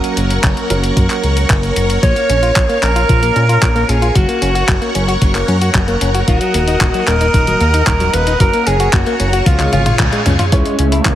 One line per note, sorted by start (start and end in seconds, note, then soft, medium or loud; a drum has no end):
0.00 0.67 F#3 medium
0.00 0.67 A#3 medium
0.00 0.67 C#4 medium
0.00 0.67 A#4 medium
0.00 4.11 A#4 medium
0.00 4.11 C#5 medium
0.00 1.99 F#5 medium
0.00 4.11 C#6 medium
0.00 closed hi-hat soft
0.17 0.39 F#1 loud
0.17 closed hi-hat medium
0.30 closed hi-hat soft
0.44 0.55 F#1 medium
0.44 kick loud
0.44 clap loud
0.44 closed hi-hat medium
0.57 closed hi-hat soft
0.70 0.92 F#1 loud
0.70 2.00 F#3 medium
0.70 2.00 A#3 medium
0.70 2.00 C#4 medium
0.70 2.00 A#4 medium
0.70 closed hi-hat medium
0.84 closed hi-hat soft
0.97 1.08 F#2 medium
0.97 kick loud
0.97 closed hi-hat medium
1.10 clap soft
1.10 closed hi-hat soft
1.23 1.45 C#2 medium
1.23 closed hi-hat soft
1.37 closed hi-hat soft
1.50 1.72 F#1 loud
1.50 kick loud
1.50 clap loud
1.50 closed hi-hat medium
1.63 closed hi-hat soft
1.76 1.98 F#1 medium
1.76 closed hi-hat medium
1.90 closed hi-hat soft
2.03 2.14 A#1 loud
2.03 2.15 F3 medium
2.03 2.84 C#5 loud
2.03 4.13 F5 medium
2.03 kick loud
2.03 closed hi-hat medium
2.16 2.28 A#3 medium
2.16 closed hi-hat soft
2.30 2.51 A#1 loud
2.30 2.37 C#4 medium
2.30 closed hi-hat medium
2.43 2.51 F4 medium
2.43 closed hi-hat soft
2.56 2.67 A#1 loud
2.56 2.61 F3 medium
2.56 kick loud
2.56 clap loud
2.56 closed hi-hat medium
2.69 2.77 A#3 loud
2.69 closed hi-hat soft
2.83 3.04 A#1 loud
2.83 2.90 C#4 medium
2.83 3.91 A#4 loud
2.83 clap medium
2.83 closed hi-hat medium
2.96 3.01 F4 medium
2.96 closed hi-hat soft
3.09 3.31 A#1 medium
3.09 3.21 F3 medium
3.09 kick loud
3.09 closed hi-hat medium
3.23 3.34 A#3 medium
3.23 closed hi-hat soft
3.36 3.58 A#2 medium
3.36 3.44 C#4 medium
3.36 closed hi-hat soft
3.49 3.57 F4 medium
3.49 closed hi-hat soft
3.62 3.84 A#1 medium
3.62 3.67 F3 medium
3.62 kick loud
3.62 clap loud
3.62 closed hi-hat medium
3.76 3.83 A#3 loud
3.76 closed hi-hat soft
3.89 4.11 A#1 loud
3.89 3.97 C#4 medium
3.89 4.17 G#4 medium
3.89 closed hi-hat medium
4.02 4.07 F4 medium
4.02 closed hi-hat soft
4.15 4.26 F#1 medium
4.15 4.27 F#3 medium
4.15 4.95 F#4 medium
4.15 9.43 A#4 medium
4.15 6.26 C#5 medium
4.15 6.26 F#5 medium
4.15 6.26 C#6 medium
4.15 kick loud
4.15 closed hi-hat medium
4.29 4.40 A#3 medium
4.29 closed hi-hat soft
4.42 4.64 F#1 loud
4.42 4.50 C#4 medium
4.42 closed hi-hat medium
4.55 4.63 F#4 medium
4.55 closed hi-hat soft
4.68 4.79 F#1 medium
4.68 4.73 F#3 medium
4.68 kick loud
4.68 clap loud
4.68 closed hi-hat medium
4.82 4.89 A#3 loud
4.82 closed hi-hat soft
4.95 5.17 F#1 loud
4.95 5.03 C#4 medium
4.95 closed hi-hat medium
5.08 5.13 F#4 medium
5.08 closed hi-hat soft
5.22 5.43 F#1 medium
5.22 5.33 F#3 medium
5.22 kick loud
5.22 closed hi-hat medium
5.35 5.46 A#3 medium
5.35 clap soft
5.35 closed hi-hat soft
5.48 5.70 F#2 medium
5.48 5.56 C#4 medium
5.48 closed hi-hat soft
5.61 5.69 F#4 medium
5.61 closed hi-hat soft
5.75 5.96 F#1 medium
5.75 5.79 F#3 medium
5.75 kick loud
5.75 clap loud
5.75 closed hi-hat medium
5.88 5.96 A#3 loud
5.88 closed hi-hat soft
6.01 6.23 F#1 loud
6.01 6.09 C#4 medium
6.01 closed hi-hat medium
6.14 6.19 F#4 medium
6.14 closed hi-hat soft
6.28 6.39 D#1 loud
6.28 6.39 D#3 medium
6.28 7.09 F#4 loud
6.28 8.38 D#5 medium
6.28 9.43 F#5 medium
6.28 8.38 D#6 medium
6.28 kick loud
6.28 closed hi-hat medium
6.41 6.53 F#3 medium
6.41 closed hi-hat soft
6.54 6.76 D#1 loud
6.54 6.62 A#3 medium
6.54 closed hi-hat medium
6.67 6.75 D#4 medium
6.67 closed hi-hat soft
6.81 6.92 D#1 medium
6.81 6.86 D#3 medium
6.81 kick loud
6.81 clap loud
6.81 closed hi-hat medium
6.94 7.02 F#3 medium
6.94 closed hi-hat soft
7.07 7.29 D#1 medium
7.07 7.15 A#3 medium
7.07 7.87 A#4 loud
7.07 clap medium
7.07 closed hi-hat medium
7.21 7.25 D#4 medium
7.21 closed hi-hat soft
7.34 7.56 D#1 medium
7.34 7.46 D#3 medium
7.34 kick loud
7.34 closed hi-hat medium
7.47 7.59 F#3 medium
7.47 closed hi-hat soft
7.61 7.82 D#2 loud
7.61 7.68 A#3 medium
7.61 closed hi-hat soft
7.74 7.82 D#4 medium
7.74 closed hi-hat soft
7.87 8.09 D#1 medium
7.87 7.92 D#3 medium
7.87 8.15 A#4 loud
7.87 kick loud
7.87 clap loud
7.87 closed hi-hat medium
8.00 8.08 F#3 loud
8.00 closed hi-hat soft
8.14 8.35 D#1 loud
8.14 8.22 A#3 medium
8.14 8.42 B4 loud
8.14 closed hi-hat medium
8.27 8.32 D#4 medium
8.27 closed hi-hat soft
8.40 8.51 F#1 loud
8.40 8.52 F#3 medium
8.40 8.68 A#4 loud
8.40 10.51 C#5 medium
8.40 10.50 C#6 medium
8.40 kick loud
8.40 closed hi-hat medium
8.54 8.65 A#3 medium
8.54 closed hi-hat soft
8.67 8.88 F#1 loud
8.67 8.75 C#4 medium
8.67 8.95 G#4 loud
8.67 closed hi-hat medium
8.80 8.88 F#4 medium
8.80 closed hi-hat soft
8.93 9.04 F#1 loud
8.93 8.98 F#3 medium
8.93 9.48 F#4 medium
8.93 kick loud
8.93 clap loud
8.93 closed hi-hat medium
9.06 9.14 A#3 loud
9.06 closed hi-hat soft
9.20 9.42 F#1 medium
9.20 9.28 C#4 medium
9.20 closed hi-hat medium
9.33 9.38 F#4 medium
9.33 closed hi-hat soft
9.46 9.68 C#2 medium
9.46 9.58 F3 medium
9.46 9.72 F4 medium
9.46 10.51 G#4 medium
9.46 10.52 F5 medium
9.46 kick loud
9.46 closed hi-hat medium
9.46 high tom medium
9.60 9.71 G#3 medium
9.60 clap soft
9.60 closed hi-hat soft
9.60 high tom medium
9.73 9.95 G#1 loud
9.73 9.81 C#4 medium
9.73 10.22 F4 medium
9.73 closed hi-hat soft
9.73 high tom medium
9.86 9.94 F4 medium
9.86 closed hi-hat soft
9.86 mid tom medium
9.99 10.10 C#2 loud
9.99 10.04 F3 medium
9.99 kick loud
9.99 clap loud
9.99 closed hi-hat medium
9.99 mid tom medium
10.12 10.20 G#3 loud
10.12 closed hi-hat soft
10.26 10.37 C#2 medium
10.26 10.34 C#4 medium
10.26 closed hi-hat medium
10.26 mid tom loud
10.39 10.44 F4 medium
10.39 closed hi-hat soft
10.39 mid tom medium
10.52 10.63 C#2 loud
10.52 10.64 E3 medium
10.52 11.15 G#3 medium
10.52 11.15 C#4 medium
10.52 11.15 E4 medium
10.52 11.15 G#4 medium
10.52 11.15 C#5 medium
10.52 11.15 E5 medium
10.52 11.15 G#5 medium
10.52 kick loud
10.52 closed hi-hat medium
10.52 riser medium
10.66 10.77 G#3 medium
10.66 closed hi-hat soft
10.79 11.01 C#2 loud
10.79 10.87 C#4 medium
10.79 closed hi-hat medium
10.92 11.00 E4 medium
10.92 closed hi-hat soft
11.05 11.15 C#2 medium
11.05 11.10 E3 medium
11.05 kick loud
11.05 clap loud
11.05 closed hi-hat medium